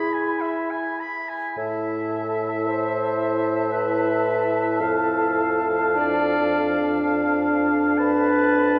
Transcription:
Already playing: french horn E4, clarinet G#4, oboe B5, flute B5
0.13 oboe G#5
0.41 oboe E5
0.71 oboe G#5
1.00 oboe B5
1.29 oboe G#5
1.57 bassoon A2, french horn E4, oboe E5, flute A5
2.14 clarinet A4
2.67 clarinet C5
3.72 clarinet B4
4.81 bassoon F2, clarinet A4, oboe F5
5.96 french horn D4, clarinet D5
7.98 clarinet B4, oboe A5, flute B5

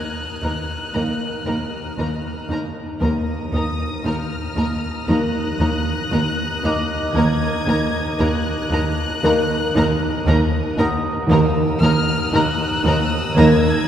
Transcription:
Already playing: cello section D#4, violin section D#6 F6 F#6
0.43 cello section D#2 D#3, double bass section D#2, viola section A#3 D#4, violin section A#4 A#5
0.94 double bass section D#2, cello section D#2 D#3, viola section A#3 D#4, french horn section A#3 A#4, violin section A#4 A#5
1.05 violin section F6
1.45 cello section D#2 D#3, double bass section D#2, viola section A#3 D#4, violin section A#4 A#5
1.98 double bass section D#2, cello section D#2 D#3, viola section A#3 D#4, violin section A#4 A#5
2.49 double bass section D#2, cello section D#2 D#4, viola section A#3 D#4, violin section A#4 A#5
3.00 cello section D#2 D#3, double bass section D#2, french horn section A#3 A#4, viola section A#3 D#4, violin section A#4 A#5 D#6 A#6
3.52 double bass section D#2, cello section D#2 D#3, viola section A#3 D#4, violin section A#4 A#5 D#6, vibraphone D#6
4.04 double bass section D#2, cello section D#2 D#4, viola section A#3 D#4, violin section A#4 A#5 F6
4.56 double bass section D#2, cello section D#2 D#3, viola section A#3 D#4, violin section A#4 A#5
5.07 double bass section D#2, cello section D#2 D#3, viola section A#3 D#4, french horn section A#3 A#4, violin section A#4 A#5 F#6
5.59 double bass section D#2, cello section D#2 D#3, viola section A#3 D#4, violin section A#4 A#5
6.11 double bass section D#2, cello section D#2 D#3, viola section A#3 D#4, violin section A#4 A#5
6.63 double bass section D#2, cello section D#2 D#4, viola section A#3 D#4, violin section A#4 A#5, vibraphone D#5 D6
7.15 double bass section D#2, cello section D#2 D#3, viola section A#3 D#4, french horn section A#3 A#4, violin section A#4 A#5 G#6
7.66 double bass section D#2, cello section D#2 D#3, viola section A#3 D#4, violin section A#4 A#5
8.18 double bass section D#2, cello section D#2 D#4, viola section A#3 D#4, violin section A#4 A#5 F#6
8.71 cello section D#2 D#3, double bass section D#2, viola section A#3 D#4, violin section A#4 A#5
9.22 double bass section D#2, cello section D#2 D#3, french horn section A#3 A#4, viola section A#3 D#4, violin section A#4 A#5
9.74 cello section D#2 D#3, double bass section D#2, viola section A#3 D#4, violin section A#4 A#5
10.26 double bass section D#2, cello section D#2 D#3, viola section A#3 D#4, violin section A#4 A#5
10.77 double bass section D#2, cello section D#2 D#4, viola section A#3 D#4, violin section A#4 A#5, vibraphone F#5 D#6
11.29 double bass section D#2, cello section D#2 D#3, french horn section A#3 A#4, viola section A#3 D#4, violin section A#4 A#5 D#6 E6
11.81 double bass section D#2, cello section D#2 D#3, viola section A#3 D#4, violin section A#4 A#5 F6
12.33 double bass section D#2, cello section D#2 D#4, viola section A#3 D#4, violin section A#4 A#5 F#6
12.84 double bass section D#2, cello section D#2 D#3, viola section A#3 D#4, violin section A#4 A#5
13.35 double bass section D#2, cello section D#2 D#3, french horn section A#3 A#4, viola section A#3 D#4, violin section A#4 A#5 G#6

